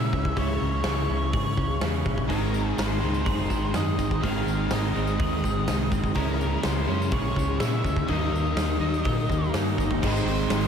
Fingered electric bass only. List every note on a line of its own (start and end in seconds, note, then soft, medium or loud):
0.13 0.32 C#2 medium
0.36 0.56 C#2 medium
0.61 0.81 C#2 medium
0.85 1.05 C#2 loud
1.09 1.29 C#2 medium
1.33 1.53 G#2 medium
1.57 1.77 C#2 medium
1.81 2.01 E2 medium
2.05 2.25 A#1 loud
2.29 2.69 G#1 medium
2.78 2.97 G#1 loud
3.03 3.22 C#2 medium
3.26 3.46 F#1 medium
3.50 3.70 G#1 medium
3.75 3.94 F#2 medium
3.98 4.18 G#1 medium
4.23 4.42 G#1 medium
4.46 4.66 G#1 medium
4.71 4.90 G#1 medium
4.96 5.15 G#1 medium
5.20 5.40 D#2 medium
5.44 5.63 G#1 medium
5.68 5.87 C2 medium
5.91 6.11 F#1 medium
6.15 6.55 C#2 medium
6.65 6.84 C#2 loud
6.88 7.08 F#2 medium
7.12 7.32 A#1 medium
7.36 7.56 C#2 medium
7.60 7.80 A#2 medium
7.84 8.04 D2 medium
8.08 8.28 D#2 loud
8.32 8.52 D#2 medium
8.56 8.76 D#2 medium
8.79 9.00 D#2 medium
9.05 9.25 A#2 medium
9.29 9.49 D#2 medium
9.54 9.74 G2 medium
9.78 9.98 G1 medium
10.02 10.21 G#1 loud
10.26 10.44 G#1 medium
10.50 10.68 G#1 loud